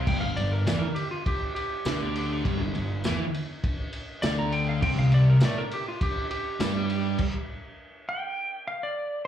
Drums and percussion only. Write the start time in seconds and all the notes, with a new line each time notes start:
0.07 kick, crash
0.37 ride
0.67 snare, ride, tambourine
0.96 ride
1.26 kick, ride
1.56 ride
1.85 snare, ride, tambourine
2.16 ride
2.45 kick, ride
2.75 ride
3.04 snare, ride, tambourine
3.34 ride
3.64 kick, ride
3.93 ride
4.23 snare, ride, tambourine
4.52 ride
4.82 kick, crash
5.12 ride
5.41 snare, ride, tambourine
5.71 ride
6.01 kick, ride
6.31 ride
6.60 snare, ride, tambourine
6.90 ride
7.18 kick, crash